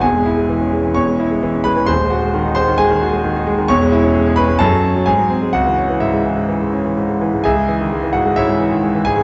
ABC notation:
X:1
M:4/4
L:1/16
Q:1/4=130
K:C#m
V:1 name="Grand piano"
[Gg]8 [cc']6 [Bb]2 | [^B^b]6 [Bb]2 [Gg]6 z2 | [cc']6 [Bb]2 [Aa]4 [Gg]4 | [Ff]4 [Ee]8 z4 |
[Geg]6 [Ff]2 [Ece]6 [Gg]2 |]
V:2 name="Grand piano" clef=bass
[E,,,E,,] G, E G, E, C G, E, E,, G, E G, E, C G, E, | [D,,,D,,] G, F G, D, D G, D, G, D, F G, D, D G, D, | [E,,,E,,] G, E C G, G C G, F,, F, C F, G,, F, ^B, G, | C,, E, C E, G,, G, E, G,, E, G,, C E, G,, G, E, G,, |
C,, G, E, D, G, E, G,, G, G,, G, E, D, G, E, G,, G, |]